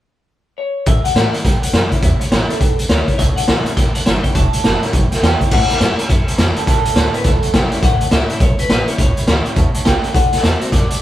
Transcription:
0.58 C#5
0.86 A1 A2 E5, kick, closed hi-hat
1.04 F#5, muted upright bass stroke, closed hi-hat
1.14 A2 E3 G3 C#4 E4, snare, closed hi-hat
1.33 muted upright bass stroke, closed hi-hat
1.45 E2 G2 G5, kick, snare, closed hi-hat
1.62 F#5, muted upright bass stroke, closed hi-hat
1.73 F#2 E3 G3 C#4 E4, snare, closed hi-hat
1.91 C#4 E4, kick, closed hi-hat
2.02 E2 A2 E5, kick, closed hi-hat
2.20 C#5, muted upright bass stroke, closed hi-hat
2.31 A1 E3 G3 C#4 E4, snare, closed hi-hat
2.49 C#4 E4 A4, closed hi-hat
2.60 E2, kick, closed hi-hat
2.79 closed hi-hat
2.89 D2 E3 G3 C#4 E4 C#5, snare, closed hi-hat
3.08 muted upright bass stroke, kick, closed hi-hat
3.18 C#2 A2 C#5 E5 A5, kick, closed hi-hat
3.36 C#5 E5 F#5 A5, muted upright bass stroke, closed hi-hat
3.47 B1 E3 G3 C#4 E4 C#5 E5 A5, snare, closed hi-hat
3.65 C#4 E4 C#5 E5 A5, muted upright bass stroke, closed hi-hat
3.77 A1 E2 C#5 E5 G5 A5, kick, snare, closed hi-hat
3.94 C#5 E5 F#5 A5, muted upright bass stroke, closed hi-hat
4.05 G1 E3 G3 C#4 E4 C#5 E5 A5, snare, closed hi-hat
4.23 C#4 E4 C#5 E5 F#5 G5, kick, closed hi-hat
4.34 E1 A2 C#5 E5 A5, kick, closed hi-hat
4.52 C#5 E5 A5, closed hi-hat
4.63 F#1 E3 G3 C#4 E4 C#5 A5, snare, closed hi-hat
4.81 C#4 E4 C#5 E5 F#5, muted upright bass stroke, snare, closed hi-hat
4.93 G1 E2 C#5 E5 G5, kick, closed hi-hat
5.11 C#5 E5 G5, snare, closed hi-hat
5.22 E2 E3 G3 C#4 E4 C#5 E5 G5 A5, snare, closed hi-hat
5.40 C#4 E4 C#5 E5 A5, kick, closed hi-hat
5.51 A2 C#5 E5 F#5 A5, kick, snare, crash
5.70 C#5 E5 B5, snare, closed hi-hat
5.80 G2 E3 G3 C#4 E4 C#5 E5 F#5, snare, closed hi-hat
5.98 C#4 E4 C#5 E5 A5, muted upright bass stroke, closed hi-hat
6.09 E2 F#2 C#5 E5 A5, kick, closed hi-hat
6.28 C#5 E5 A5, muted upright bass stroke, closed hi-hat
6.38 F2 E3 G3 C#4 E4 C#5 E5 A5, snare, closed hi-hat
6.56 C#4 E4 A4 C#5 E5 G5, muted upright bass stroke, closed hi-hat
6.67 E2 A2 A4 C#5 E5 A5, kick, snare, closed hi-hat
6.84 C#5 E5, closed hi-hat
6.95 D2 E3 G3 C#4 E4 C#5 E5 A5, snare, closed hi-hat
7.13 C#4 E4 B4 C#5 E5 G5, closed hi-hat
7.24 C#2 E2 A4 C#5 E5 A5, kick, snare, closed hi-hat
7.42 C#5 E5 F#5, muted upright bass stroke, closed hi-hat
7.53 B1 E3 G3 C#4 E4 C#5 E5 G5 A5, kick, snare, closed hi-hat
7.72 C#4 E4 C#5 E5 A5, muted upright bass stroke, closed hi-hat
7.82 A1 A2 C#5 E5 F#5 G5, kick, snare, closed hi-hat
8.01 C#5 E5 A5, muted upright bass stroke, closed hi-hat
8.11 C#2 E3 G3 C#4 E4 C#5 E5 A5, snare, closed hi-hat
8.29 C#4 E4 C#5 E5 A5, muted upright bass stroke, closed hi-hat
8.40 B1 E2 C#5 E5 A5, kick, closed hi-hat
8.58 B4 C#5 E5 A5, muted upright bass stroke, closed hi-hat
8.69 A1 E3 G3 C#4 E4 B4 C#5 E5 A5, snare, closed hi-hat
8.87 C#4 E4 C#5 E5 A5, muted upright bass stroke, closed hi-hat
8.98 C#2 A2 C#5 E5 A5, kick, closed hi-hat
9.17 C#5 E5 B5, muted upright bass stroke, closed hi-hat
9.27 D2 E3 G3 C#4 E4 C#5 E5 A5, snare, closed hi-hat
9.45 C#4 E4 C#5 E5 G5, closed hi-hat
9.55 E2 B2 C#5 E5 A5, kick, closed hi-hat
9.74 C#5 E5 A5, muted upright bass stroke, closed hi-hat
9.85 C#2 C#3 C#5 G5 B5, kick, snare, closed hi-hat
10.04 C#5 E5 A5, muted upright bass stroke, closed hi-hat
10.14 D2 D3 D5 F#5 A5, kick, closed hi-hat
10.31 D5 F#5 A5, snare, closed hi-hat
10.43 E2 D3 A3 C4 F#4 D5 E5 F#5 C6, snare, closed hi-hat
10.61 C4 F#4 D5 F#5 C6, muted upright bass stroke, closed hi-hat
10.72 F#2 A2 D5 F#5 A5, kick, snare, closed hi-hat
10.89 D5 F#5 A5, muted upright bass stroke, closed hi-hat

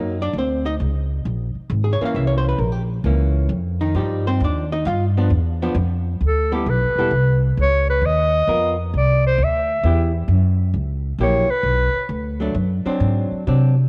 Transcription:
Already playing: F#2 F#3 A#3 D#4
0.22 D4 D5
0.33 D2
0.38 C4 C5
0.65 D#4 D#5
0.80 C#2
1.25 A#1
1.55 muted upright bass stroke
1.70 G#1
1.84 G#4
1.93 C#5
2.00 E3 A#3 C#4, muted upright bass stroke
2.06 F5
2.15 C2 E5
2.27 C#5
2.38 C5
2.49 B4
2.59 A#1 A#4
2.72 G4
3.04 C#2 E3 A#3 C#4
3.49 F2
3.81 D#3 D#4
3.95 G2 F3 G3 D#4 G4
4.27 C4 C5
4.40 D#2 D4
4.44 D5
4.72 D#4 D#5
4.85 G2 F4 F5
5.17 F3 B3 D4
5.30 E2
5.62 F3 B3 D4
5.75 F2
6.21 D2
6.26 A4
6.52 G3 B3 E4 G4 A4
6.66 B1 B4
6.81 G1
6.96 E1 G3 B3 E4 A4
7.11 C2
7.57 C#2
7.62 C#5
7.90 B4
8.01 D#2
8.05 D#5
8.47 F2 B3 F4 A#4
8.94 C2 D5
9.27 C5
9.38 D2
9.44 E5
9.83 E2 B3 E4 G4
10.28 F#2
10.74 C#2
11.19 A#1 F#3 A#3 E4 G4
11.23 C#5
11.49 B4, muted upright bass stroke
11.63 B1
11.94 muted upright bass stroke
12.09 D2
12.40 F#3 A3 D4
12.54 F#2
12.85 F#3 C4 D4, muted upright bass stroke
13.00 G#2
13.31 muted upright bass stroke
13.47 C3 F#3 C4 D4

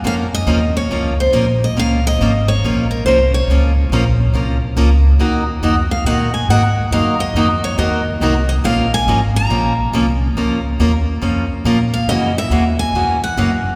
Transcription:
0.03 F2 F3 A#3 C#4 F4 A#4 F5
0.34 D#5
0.46 D#2 F3 A#3 C#4 F4 A#4
0.77 C#5
0.89 C#2 F3 A#3 C#4 F4 A#4
1.20 C5
1.32 A#1 F3 A#3 C#4 F4 A#4
1.64 D#5
1.75 C#2 F3 A#3 C#4 F4 A#4
1.79 F5
2.07 D#5
2.19 G#1 F3 A#3 C#4 F4 A#4
2.48 C#5
2.62 A#1 F3 A#3 C#4 F4 A#4
2.91 A#4
3.05 C2 F3 A#3 C#4 F4 A#4 C5
3.34 C#5
3.47 C#2 F3 A#3 C#4
3.51 F4 A#4
3.90 A#1 F3 A#3 C#4 F4 A#4
4.33 C2 F3 A#3 C#4 F4 A#4
4.76 C#2 F3 A#3 C#4 F4 A#4
5.19 D#2 D#3 A#3 D#4 F#4 A#4
5.62 F2 D#3 A#3 D#4 F#4 A#4
5.91 F5
6.04 A#2 D#3 A#3 D#4 F#4 A#4 F#5
6.34 G#5
6.48 G#2 D#3 A#3 D#4 F#4 A#4 F#5
6.76 muted upright bass stroke
6.91 F#2 D#3 A#3 D#4 F#4 A#4 F5
7.20 D#5
7.34 F2 D#3 A#3 D#4 F#4 A#4
7.64 C#5
7.77 D#2 D#3 A#3 D#4 F#4 A#4 D#5
8.20 C2 D#3 A#3 D#4 F#4 A#4
8.49 D#5
8.64 A#1 F3 A#3 C#4 F4 A#4 F5
8.94 G#5
9.06 G#1 F3 A#3 C#4 F4 A#4
9.36 A#5
9.49 A#1 F3 A#3 C#4 F4 A#4
9.92 C2 F3 A#3 C#4 F4 A#4
10.35 C#2 F3 A#3 C#4 F4 A#4
10.79 D#2 F3 A#3 C#4 F4 A#4
11.22 F2 F3 A#3 C#4 F4 A#4
11.64 A#2 F3 A#3 C#4 F4 A#4
11.94 F5
12.07 F#2 C#3 E3 A#3 C#4 F#4 D#5
12.38 E5
12.50 D#2 C#3 E3 A#3 C#4 F#4
12.79 G#5
12.93 E2 C#3 E3 A#3 C#4 F#4
13.24 F#5
13.37 F#2 C#3 E3 A#3 C#4 F#4
13.66 muted upright bass stroke

